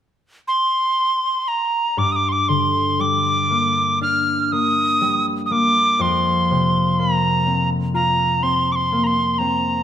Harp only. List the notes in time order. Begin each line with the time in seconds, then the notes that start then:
1.97 G2
2.49 D3
2.99 G3
3.50 A#3
4.01 D4
4.52 A#3
5.01 G3
5.51 A#3
5.99 F2
6.51 C3
6.99 A#3
7.46 C4
7.94 F4
8.43 C4
8.92 A#3
9.40 C4